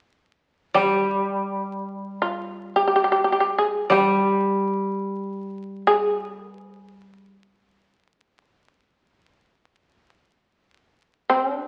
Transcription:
0.74 3.89 G3 soft
0.74 2.19 G4 soft
2.22 2.73 F4 soft
2.76 2.85 G4 soft
2.88 2.95 G4 soft
2.96 3.03 G4 soft
3.04 3.11 G4 soft
3.12 3.21 G4 soft
3.24 3.31 G4 soft
3.32 3.39 G4 soft
3.40 3.49 G4 soft
3.58 3.91 G#4 soft
3.90 7.28 G3 soft
3.90 5.81 G4 soft
5.87 6.25 G#4 medium
6.25 6.40 A4 medium
6.40 6.55 A#4 medium
6.55 6.69 B4 medium
6.69 8.41 C5 medium
11.30 11.54 C4 medium
11.54 11.68 D4 medium

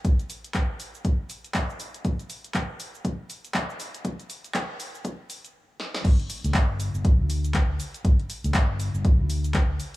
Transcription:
0.05 kick loud
0.05 closed hi-hat medium
0.05 shaker soft
0.19 closed hi-hat soft
0.19 shaker soft
0.30 open hi-hat loud
0.30 shaker medium
0.44 closed hi-hat medium
0.44 shaker soft
0.54 kick loud
0.54 clap loud
0.54 closed hi-hat medium
0.54 shaker soft
0.80 open hi-hat medium
0.80 shaker medium
0.95 shaker soft
1.05 kick loud
1.05 closed hi-hat medium
1.05 shaker soft
1.30 open hi-hat loud
1.30 shaker medium
1.44 closed hi-hat soft
1.44 shaker soft
1.54 kick loud
1.54 clap loud
1.54 closed hi-hat medium
1.54 shaker soft
1.70 shaker soft
1.80 open hi-hat medium
1.80 shaker medium
1.94 closed hi-hat medium
1.94 shaker soft
2.05 kick loud
2.05 closed hi-hat medium
2.05 shaker soft
2.19 closed hi-hat soft
2.19 shaker soft
2.30 open hi-hat loud
2.30 shaker medium
2.44 closed hi-hat soft
2.44 shaker soft
2.54 kick loud
2.54 clap loud
2.54 closed hi-hat medium
2.54 shaker soft
2.80 open hi-hat loud
2.80 shaker medium
2.95 shaker soft
3.05 kick loud
3.05 closed hi-hat medium
3.05 shaker soft
3.30 open hi-hat loud
3.30 shaker medium
3.44 closed hi-hat soft
3.44 shaker soft
3.54 kick loud
3.54 clap loud
3.54 closed hi-hat medium
3.54 shaker soft
3.70 shaker soft
3.80 open hi-hat loud
3.80 shaker medium
3.94 closed hi-hat medium
3.94 shaker soft
4.05 kick loud
4.05 closed hi-hat medium
4.05 shaker soft
4.19 closed hi-hat soft
4.19 shaker soft
4.30 open hi-hat loud
4.30 shaker medium
4.44 closed hi-hat soft
4.44 shaker soft
4.54 kick loud
4.54 clap loud
4.54 closed hi-hat medium
4.54 shaker soft
4.80 open hi-hat loud
4.80 shaker medium
4.95 shaker soft
5.05 kick loud
5.05 closed hi-hat medium
5.05 shaker soft
5.30 open hi-hat loud
5.30 shaker medium
5.44 closed hi-hat soft
5.44 shaker soft
5.80 snare medium
5.94 snare loud
6.05 6.16 G1 loud
6.05 kick loud
6.05 closed hi-hat medium
6.05 crash loud
6.05 shaker soft
6.20 closed hi-hat soft
6.30 open hi-hat loud
6.30 shaker medium
6.44 6.52 D2 loud
6.44 closed hi-hat medium
6.44 shaker soft
6.54 6.89 G1 medium
6.54 kick loud
6.54 clap loud
6.54 closed hi-hat medium
6.54 shaker soft
6.80 open hi-hat medium
6.80 shaker medium
6.94 7.19 G1 medium
6.94 shaker soft
7.05 kick loud
7.05 closed hi-hat medium
7.05 shaker soft
7.19 7.76 D2 medium
7.30 open hi-hat loud
7.30 shaker medium
7.44 closed hi-hat soft
7.44 shaker soft
7.54 kick loud
7.54 clap loud
7.54 closed hi-hat medium
7.54 shaker soft
7.80 open hi-hat medium
7.80 shaker medium
7.94 closed hi-hat medium
7.94 shaker soft
8.05 8.16 G1 loud
8.05 kick loud
8.05 closed hi-hat medium
8.05 shaker soft
8.19 closed hi-hat soft
8.30 open hi-hat loud
8.30 shaker medium
8.44 8.52 D2 loud
8.44 closed hi-hat medium
8.44 shaker soft
8.54 8.89 G1 medium
8.54 kick loud
8.54 clap loud
8.54 closed hi-hat medium
8.54 shaker soft
8.80 open hi-hat loud
8.80 shaker medium
8.94 9.19 G1 medium
8.94 shaker soft
9.05 kick loud
9.05 closed hi-hat medium
9.05 shaker soft
9.19 9.76 D2 medium
9.30 open hi-hat loud
9.30 shaker medium
9.44 closed hi-hat soft
9.44 shaker soft
9.54 kick loud
9.54 clap loud
9.54 closed hi-hat medium
9.54 shaker soft
9.80 open hi-hat loud
9.80 shaker medium

